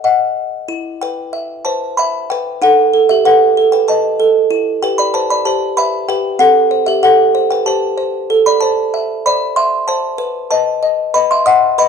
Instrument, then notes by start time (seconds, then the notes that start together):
music box
0.04 D#5 F#5
0.68 E4
1.01 B4 G5
1.33 E5
1.65 B4 C5 A5
1.97 E5 B5
2.30 B4 G5
2.62 D#4 A4 F#5
2.93 A4
3.09 G4 E5
3.25 A4 B4 F#5
3.57 A4
3.72 B4 G5
3.88 B4 D#5 A5
4.20 A4
4.50 E4
4.83 G4 B4 G5
4.98 D5 B5
5.14 B4 C5 A5
5.30 D5 B5
5.45 G4 C5 A5
5.77 B4 E5 B5
6.08 G4 B4 G5
6.39 C4 A4 F#5
6.71 C5
6.86 G4 E5
7.03 G4 A4 F#5
7.35 C5
7.50 B4 G5
7.66 G4 C5 A5
7.98 C5
8.30 A4
8.46 D5 B5
8.61 C5 A5
8.94 E5
9.26 C5 D5 B5
9.56 E5 C6
9.88 C5 A5
10.18 B4
10.51 B4 D#5 A5
10.83 D#5
11.14 B4 D#5 B5
11.31 E5 C6
11.46 D#5 F#5 D#6
11.78 B4 D#5 B5